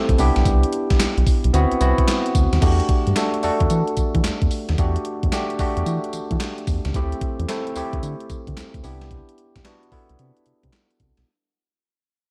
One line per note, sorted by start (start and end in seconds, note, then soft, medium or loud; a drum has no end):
0.00 0.21 A3 medium
0.00 0.20 C4 medium
0.00 0.19 E4 medium
0.00 0.20 G4 loud
0.00 0.22 A4 loud
0.09 0.16 B1 loud
0.09 kick loud
0.09 closed hi-hat medium
0.18 0.31 C2 loud
0.18 1.21 B3 medium
0.18 1.21 D4 medium
0.18 1.21 E4 medium
0.18 1.21 G4 loud
0.18 open hi-hat medium
0.18 tambourine medium
0.36 0.43 B1 loud
0.36 snare medium
0.36 closed hi-hat medium
0.45 0.65 C2 loud
0.45 kick loud
0.45 closed hi-hat medium
0.45 tambourine medium
0.63 closed hi-hat medium
0.73 closed hi-hat medium
0.90 0.94 B1 medium
0.90 kick loud
0.90 snare medium
0.90 closed hi-hat medium
1.00 1.07 B1 medium
1.00 snare loud
1.00 clap loud
1.00 closed hi-hat medium
1.00 tambourine medium
1.18 1.24 B1 medium
1.18 closed hi-hat soft
1.27 kick loud
1.27 open hi-hat medium
1.27 tambourine medium
1.44 1.51 B1 medium
1.44 closed hi-hat medium
1.54 1.66 D2 loud
1.54 1.79 B3 loud
1.54 1.79 C4 medium
1.54 1.80 E4 medium
1.54 1.80 F#4 loud
1.54 closed hi-hat medium
1.54 tambourine medium
1.71 1.75 C2 soft
1.71 closed hi-hat medium
1.80 1.93 C2 medium
1.80 2.57 B3 medium
1.80 2.57 C4 medium
1.80 2.58 E4 medium
1.80 2.58 F#4 medium
1.80 closed hi-hat medium
1.80 tambourine medium
1.98 kick loud
1.98 closed hi-hat medium
2.08 snare loud
2.08 clap medium
2.08 closed hi-hat medium
2.08 tambourine loud
2.26 closed hi-hat medium
2.35 2.48 D2 loud
2.35 kick loud
2.35 closed hi-hat medium
2.35 tambourine medium
2.53 2.59 D#2 medium
2.53 snare medium
2.53 closed hi-hat medium
2.61 2.81 E2 loud
2.61 3.13 A3 medium
2.61 3.13 D4 medium
2.61 3.13 F#4 medium
2.61 3.13 G4 loud
2.61 kick loud
2.61 closed hi-hat medium
2.61 crash medium
2.61 tambourine medium
2.80 closed hi-hat medium
2.89 kick loud
2.89 closed hi-hat medium
3.07 3.14 G2 medium
3.07 closed hi-hat medium
3.16 3.42 A3 medium
3.16 3.42 D4 medium
3.16 3.42 F#4 medium
3.16 3.42 A4 medium
3.16 snare loud
3.16 clap loud
3.16 closed hi-hat medium
3.16 tambourine loud
3.34 closed hi-hat soft
3.43 3.51 E2 soft
3.43 4.45 A3 medium
3.43 4.45 D4 medium
3.43 4.46 F#4 medium
3.43 4.46 A4 medium
3.43 open hi-hat medium
3.43 tambourine medium
3.60 3.67 E2 medium
3.60 kick medium
3.60 closed hi-hat medium
3.70 3.83 E3 loud
3.70 closed hi-hat medium
3.70 tambourine medium
3.88 closed hi-hat medium
3.97 4.04 E3 soft
3.97 kick medium
3.97 closed hi-hat medium
3.97 tambourine medium
4.15 4.21 E3 medium
4.15 kick loud
4.15 closed hi-hat medium
4.24 4.32 E2 soft
4.24 snare loud
4.24 clap medium
4.24 closed hi-hat medium
4.24 tambourine loud
4.42 4.48 E2 medium
4.42 kick medium
4.42 closed hi-hat soft
4.51 open hi-hat medium
4.51 tambourine medium
4.69 4.76 D#2 loud
4.69 snare medium
4.69 closed hi-hat medium
4.78 4.97 E2 loud
4.78 5.29 A3 loud
4.78 5.30 D4 medium
4.78 5.30 F#4 medium
4.78 5.30 G4 loud
4.78 kick loud
4.78 closed hi-hat medium
4.78 tambourine medium
4.96 closed hi-hat medium
5.05 closed hi-hat medium
5.23 5.30 E2 loud
5.23 kick medium
5.23 closed hi-hat soft
5.32 5.58 A3 medium
5.32 5.58 D4 medium
5.32 5.58 F#4 medium
5.32 5.58 G4 loud
5.32 snare loud
5.32 clap loud
5.32 closed hi-hat medium
5.32 tambourine medium
5.50 closed hi-hat soft
5.59 5.66 E2 soft
5.59 6.61 A3 medium
5.59 6.62 D4 medium
5.59 6.62 F#4 medium
5.59 6.62 G4 loud
5.59 kick loud
5.59 open hi-hat medium
5.59 tambourine medium
5.77 5.84 E2 medium
5.77 closed hi-hat medium
5.86 5.99 E3 loud
5.86 closed hi-hat medium
5.86 tambourine medium
6.04 closed hi-hat medium
6.13 6.21 E3 soft
6.13 closed hi-hat medium
6.13 tambourine medium
6.31 6.38 E3 loud
6.31 kick medium
6.31 closed hi-hat soft
6.40 snare loud
6.40 clap medium
6.40 closed hi-hat medium
6.40 tambourine loud
6.58 closed hi-hat soft
6.67 6.80 E2 loud
6.67 kick loud
6.67 open hi-hat medium
6.67 tambourine medium
6.85 6.92 C#2 loud
6.85 snare medium
6.85 closed hi-hat medium
6.94 7.14 D2 loud
6.94 7.46 A3 medium
6.94 7.46 C4 medium
6.94 7.46 E4 medium
6.94 7.46 G4 loud
6.94 kick loud
6.94 closed hi-hat medium
6.94 tambourine medium
7.12 closed hi-hat medium
7.21 kick loud
7.21 closed hi-hat medium
7.39 7.46 E2 loud
7.39 closed hi-hat medium
7.48 7.74 A3 loud
7.48 7.74 C4 medium
7.48 7.74 E4 medium
7.48 7.75 A4 medium
7.48 snare loud
7.48 clap loud
7.48 closed hi-hat medium
7.48 tambourine loud
7.67 closed hi-hat soft
7.76 7.83 D2 soft
7.76 8.78 A3 medium
7.76 8.78 C4 medium
7.76 8.78 E4 medium
7.76 8.78 G4 loud
7.76 open hi-hat medium
7.76 tambourine medium
7.93 8.00 D2 medium
7.93 kick medium
7.93 closed hi-hat medium
8.03 8.15 D3 loud
8.03 closed hi-hat medium
8.03 tambourine medium
8.20 closed hi-hat medium
8.30 8.37 D3 soft
8.30 kick medium
8.30 closed hi-hat medium
8.30 tambourine medium
8.47 8.54 D3 medium
8.47 kick loud
8.47 closed hi-hat medium
8.57 8.64 D2 soft
8.57 snare loud
8.57 clap medium
8.57 closed hi-hat medium
8.57 tambourine medium
8.74 8.81 D2 medium
8.74 kick medium
8.74 closed hi-hat soft
8.83 9.22 C2 loud
8.83 9.60 B3 medium
8.83 9.60 D4 medium
8.83 9.60 E4 medium
8.83 9.61 G4 loud
8.83 open hi-hat medium
8.83 tambourine medium
9.01 snare medium
9.01 closed hi-hat soft
9.11 kick loud
9.11 closed hi-hat medium
9.29 closed hi-hat medium
9.38 closed hi-hat medium
9.56 9.62 C2 loud
9.56 kick medium
9.56 snare medium
9.56 closed hi-hat medium
9.65 9.90 B3 medium
9.65 9.90 D4 medium
9.65 9.91 E4 medium
9.65 9.91 F#4 loud
9.65 snare loud
9.65 clap medium
9.65 closed hi-hat medium
9.83 closed hi-hat soft
9.92 9.99 C2 soft
9.92 10.94 B3 medium
9.92 10.94 D4 medium
9.92 10.94 E4 medium
9.92 10.94 A4 medium
9.92 kick medium
9.92 open hi-hat medium
10.09 10.16 C2 medium
10.09 closed hi-hat medium
10.19 10.32 C3 loud
10.19 closed hi-hat medium
10.37 closed hi-hat medium
10.46 10.53 C3 soft
10.46 closed hi-hat medium
10.63 10.70 C3 loud
10.63 kick medium
10.63 closed hi-hat soft
10.73 snare loud
10.73 clap medium
10.73 closed hi-hat medium
10.91 closed hi-hat medium
11.00 11.13 C2 medium
11.00 kick loud
11.00 closed hi-hat medium
11.17 11.24 B1 loud
11.17 snare medium
11.17 closed hi-hat medium